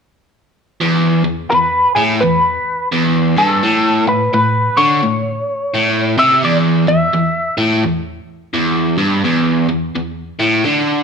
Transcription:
0.81 overdriven electric guitar E2
1.24 overdriven electric guitar E2
1.50 overdriven electric guitar E2, lead electric guitar B4
1.95 overdriven electric guitar A2, lead electric guitar G#4
2.21 overdriven electric guitar E2, lead electric guitar B4
2.92 overdriven electric guitar E2
3.37 overdriven electric guitar G2, lead electric guitar A4
3.63 overdriven electric guitar A2
4.07 overdriven electric guitar A2, lead electric guitar B4
4.34 overdriven electric guitar A2, lead electric guitar B4
4.77 overdriven electric guitar D3, lead electric guitar C#5
5.03 overdriven electric guitar A2
5.74 overdriven electric guitar A2
6.18 overdriven electric guitar C3, lead electric guitar E5
6.43 overdriven electric guitar E2, lead electric guitar D5
6.88 overdriven electric guitar E2, lead electric guitar E5
7.14 overdriven electric guitar E2
7.58 overdriven electric guitar A2
7.83 overdriven electric guitar E2
8.54 overdriven electric guitar E2
8.98 overdriven electric guitar G2
9.24 overdriven electric guitar E2
9.69 overdriven electric guitar E2
9.95 overdriven electric guitar E2
10.39 overdriven electric guitar A2
10.65 overdriven electric guitar D3

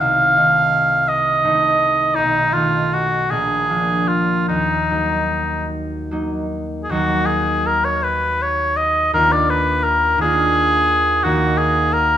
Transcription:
Already playing: harp D#4
0.01 harp C2, oboe F5
0.36 harp D#3 A3 D#4
1.08 oboe D#5
1.44 harp D#3 A3 D#4
2.15 harp B1, oboe D#4
2.53 harp D#3 A3 D#4, oboe F4
2.94 oboe F#4
3.31 harp A#1, oboe G#4
3.70 harp F3 A#3 D4
4.08 oboe F4
4.49 harp D#2, oboe D#4
4.90 harp F#3 A#3 D#4
6.11 harp F#3 A#3 D#4
6.84 oboe G#4
6.89 harp D#2 F#3 D#4, oboe F#4
6.95 harp A#3
7.26 oboe G#4
7.66 oboe A#4
7.85 oboe C#5
8.03 oboe B4
8.42 oboe C#5
8.77 oboe D#5
9.13 harp D#2 A#3 D4 F4, oboe A#4
9.32 oboe D5
9.50 oboe B4
9.84 oboe A#4
10.18 harp D#2 A#3 D4, oboe G#4
10.23 harp F4
11.24 harp D#2 A#3 D#4 F#4, oboe F#4
11.58 oboe G#4
11.93 oboe A#4

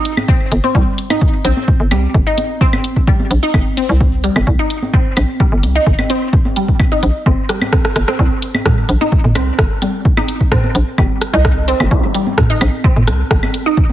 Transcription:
0.05 closed hi-hat
0.17 high conga, high woodblock
0.28 synth arpeggio sound C4, kick
0.52 fm bass G1, closed hi-hat
0.64 synth arpeggio sound C4, high conga
0.75 fm bass C2, synth arpeggio sound G3, kick, high conga
0.98 closed hi-hat
1.10 synth arpeggio sound D#4, high conga, high woodblock
1.21 kick
1.45 fm bass A#1, synth arpeggio sound C4, closed hi-hat
1.57 high conga
1.68 kick
1.80 fm bass G1
1.91 fm bass C2, synth arpeggio sound G3, closed hi-hat, high conga, high woodblock
2.14 fm bass G1, kick
2.27 synth arpeggio sound D#4
2.38 closed hi-hat, high conga
2.61 synth arpeggio sound C4, kick
2.73 high conga, high woodblock
2.84 closed hi-hat
2.96 kick
3.07 synth arpeggio sound G3, kick
3.20 high conga
3.31 fm bass A#1, closed hi-hat
3.43 synth arpeggio sound D#4
3.54 fm bass G1, kick, high conga, high woodblock
3.77 synth arpeggio sound C4, closed hi-hat
3.89 fm bass C2
4.00 kick, high conga
4.24 synth arpeggio sound G3, closed hi-hat
4.36 fm bass G1, high conga, high woodblock
4.47 fm bass C2, kick
4.59 synth arpeggio sound D#4
4.70 closed hi-hat
4.82 high conga
4.94 synth arpeggio sound C4, kick
5.17 fm bass A#1, closed hi-hat, high conga, high woodblock
5.40 synth arpeggio sound G3, kick
5.52 fm bass G1
5.63 fm bass C2, closed hi-hat, high conga
5.76 synth arpeggio sound D#4
5.87 fm bass G1, kick
5.99 high conga, high woodblock
6.10 synth arpeggio sound C4, closed hi-hat
6.33 kick
6.45 high conga
6.56 synth arpeggio sound G3, closed hi-hat
6.68 kick
6.80 kick, high conga, high woodblock
6.92 synth arpeggio sound D#4
7.03 fm bass A#1, closed hi-hat
7.26 fm bass G1, synth arpeggio sound C4, kick, high conga
7.49 synth arpeggio sound G3, cross-stick, closed hi-hat
7.62 high conga, high woodblock
7.73 synth arpeggio sound C4, kick, cross-stick
7.85 cross-stick
7.96 fm bass G1, cross-stick, closed hi-hat
8.08 synth arpeggio sound C4, cross-stick, high conga
8.19 fm bass C2, synth arpeggio sound C4, kick, high conga
8.42 closed hi-hat
8.55 high conga, high woodblock
8.66 synth arpeggio sound G3, kick, cross-stick, mid tom
8.89 fm bass A#1, closed hi-hat
9.01 synth arpeggio sound D#4, high conga
9.12 kick
9.24 fm bass G1, mid tom
9.35 fm bass C2, synth arpeggio sound C4, cross-stick, closed hi-hat, high conga, high woodblock
9.59 fm bass G1, kick, cross-stick
9.82 synth arpeggio sound G3, closed hi-hat, high conga
10.05 kick
10.17 synth arpeggio sound D#4, high conga, high woodblock
10.28 closed hi-hat
10.41 kick
10.52 synth arpeggio sound C4, kick, cross-stick, mid tom
10.64 high conga
10.75 fm bass A#1, closed hi-hat
10.98 fm bass G1, synth arpeggio sound G3, kick, high conga, high woodblock
11.21 cross-stick, closed hi-hat
11.34 fm bass C2, synth arpeggio sound D#4
11.45 kick, cross-stick, high conga
11.68 synth arpeggio sound C4, closed hi-hat
11.80 fm bass G1, zap, high conga, high woodblock
11.91 fm bass C2, kick
12.14 synth arpeggio sound G3, closed hi-hat
12.27 high conga
12.38 kick, cross-stick, mid tom
12.50 synth arpeggio sound D#4
12.61 fm bass A#1, closed hi-hat, high conga, high woodblock
12.84 synth arpeggio sound C4, kick
12.96 fm bass G1, mid tom
13.07 fm bass C2, cross-stick, closed hi-hat, high conga
13.31 fm bass G1, synth arpeggio sound G3, kick, cross-stick
13.43 high conga, high woodblock
13.54 closed hi-hat
13.66 synth arpeggio sound D#4
13.77 kick
13.89 high conga

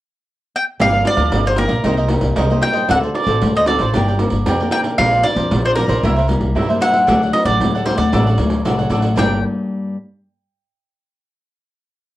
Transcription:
0.56 mandolin G5
0.79 upright bass G1, nylon-string guitar G2 F3 A#3 D4, cavaquinho G4 A#4 D5 F5, mandolin F5, pandeiro
0.93 cavaquinho A#4 D5 F5, pandeiro
1.05 mandolin D5, muted cavaquinho stroke, pandeiro
1.16 upright bass D2, nylon-string guitar F3 A#3 D4, cavaquinho A#4 D5 F5, pandeiro
1.32 upright bass G1, nylon-string guitar D3, pandeiro
1.46 cavaquinho A#4 D5 F5, mandolin C5, pandeiro
1.56 nylon-string guitar F3 A#3 D4, cavaquinho G4 A#4 D5 F5, mandolin A#4, pandeiro
1.68 upright bass A#1, cavaquinho A#4 D5 F5, pandeiro
1.84 upright bass C2, nylon-string guitar C3 A#3 D#4 G4, cavaquinho D#4 A#4 C5 D#5, pandeiro
1.97 cavaquinho A#4 C5 D#5, pandeiro
2.09 nylon-string guitar A#3 D#4 G4, muted cavaquinho stroke, pandeiro
2.21 upright bass C2, pandeiro
2.36 upright bass C2, nylon-string guitar G2, cavaquinho D#4 A#4 C5 D#5, pandeiro
2.50 nylon-string guitar A#3 D#4 G4, cavaquinho A#4 C5 D#5, pandeiro
2.62 cavaquinho D#4 A#4 C5 D#5, mandolin G5, pandeiro
2.74 cavaquinho A#4 C5 D#5, pandeiro
2.89 upright bass D2, nylon-string guitar D3 C4 F#4 A4, cavaquinho F#4 A4 C5 D5, mandolin F#5, pandeiro
3.03 cavaquinho A4 C5 D5, pandeiro
3.14 mandolin D5, muted cavaquinho stroke, pandeiro
3.27 upright bass A1, nylon-string guitar C4 F#4 A4, cavaquinho A4 C5 D5, pandeiro
3.41 upright bass D2, nylon-string guitar A2, pandeiro
3.55 cavaquinho A4 C5 D5, mandolin D#5, pandeiro
3.66 nylon-string guitar C4 F#4 A4, cavaquinho F#4 A4 C5 D5, mandolin D5, pandeiro
3.78 upright bass A1, cavaquinho A4 C5 D5, pandeiro
3.93 upright bass G1, nylon-string guitar G3 A#3 D4 A#4, cavaquinho D4 A#4 D5 G5, pandeiro
4.08 cavaquinho A#4 D5 G5, pandeiro
4.19 nylon-string guitar A#3 D4 A#4, muted cavaquinho stroke, pandeiro
4.30 upright bass G1, pandeiro
4.46 upright bass F2, nylon-string guitar D3, cavaquinho D4 A#4 D5 G5, pandeiro
4.60 nylon-string guitar A#3 D4 A#4, cavaquinho A#4 D5 G5, pandeiro
4.71 cavaquinho D4 A#4 D5 G5, mandolin G5, pandeiro
4.84 cavaquinho A#4 D5 G5, pandeiro
4.98 upright bass A#1, nylon-string guitar A#2 F3 C4 D4, cavaquinho D4 A#4 C5 D5, mandolin F5, pandeiro
5.13 cavaquinho A#4 C5 D5, pandeiro
5.23 mandolin D5, muted cavaquinho stroke, pandeiro
5.35 upright bass F2, nylon-string guitar F3 C4 D4, cavaquinho A#4 C5 D5, pandeiro
5.51 upright bass A#1, nylon-string guitar F3, pandeiro
5.65 cavaquinho A#4 C5 D5, mandolin C5, pandeiro
5.76 nylon-string guitar F3 C4 D4, cavaquinho D4 A#4 C5 D5, mandolin A#4, pandeiro
5.88 upright bass A#1, cavaquinho A#4 C5 D5, pandeiro
6.04 upright bass C2, nylon-string guitar C3 G3 A#3 E4, cavaquinho E4 A#4 C5 E5, pandeiro
6.17 cavaquinho A#4 C5 E5, pandeiro
6.28 nylon-string guitar G3 A#3 E4, muted cavaquinho stroke, pandeiro
6.41 upright bass C2, pandeiro
6.56 nylon-string guitar G2, upright bass G2, cavaquinho E4 A#4 C5 E5, pandeiro
6.69 nylon-string guitar G3 A#3 E4, cavaquinho A#4 C5 E5, pandeiro
6.81 cavaquinho E4 A#4 C5 E5, mandolin F#5, pandeiro
6.92 cavaquinho A#4 C5 E5, pandeiro
7.07 upright bass D2, nylon-string guitar D3 F#3 A3 D4, cavaquinho D4 A4 D5 F#5, pandeiro
7.22 cavaquinho A4 D5 F#5, pandeiro
7.33 mandolin D#5, muted cavaquinho stroke, pandeiro
7.45 upright bass A1, nylon-string guitar F#3 A3 D4, cavaquinho A4 D5 F#5, mandolin D5, pandeiro
7.60 upright bass D2, nylon-string guitar A2, pandeiro
7.75 cavaquinho A4 D5 F#5, pandeiro
7.86 nylon-string guitar F#3 A3 D4, cavaquinho D4 A4 D5 F#5, mandolin C5, pandeiro
7.97 upright bass D2, cavaquinho A4 D5 F#5, mandolin D5, pandeiro
8.13 upright bass A1, nylon-string guitar D3 F#3 A3 D4, cavaquinho D4 A4 D5 F#5, pandeiro
8.27 cavaquinho A4 D5 F#5, pandeiro
8.38 upright bass D2, nylon-string guitar F#3 A3 D4, muted cavaquinho stroke, pandeiro
8.50 pandeiro
8.65 upright bass C2, nylon-string guitar A2, cavaquinho D4 A4 D5 F#5, pandeiro
8.79 nylon-string guitar F#3 A3 D4, cavaquinho A4 D5 F#5, pandeiro
8.90 upright bass A1, cavaquinho D4 A4 D5 F#5, pandeiro
9.01 cavaquinho A4 D5 F#5, pandeiro
9.16 upright bass G1, nylon-string guitar G2 G3 A#3 D4, cavaquinho D4 A#4 D5 G5, mandolin G5, pandeiro

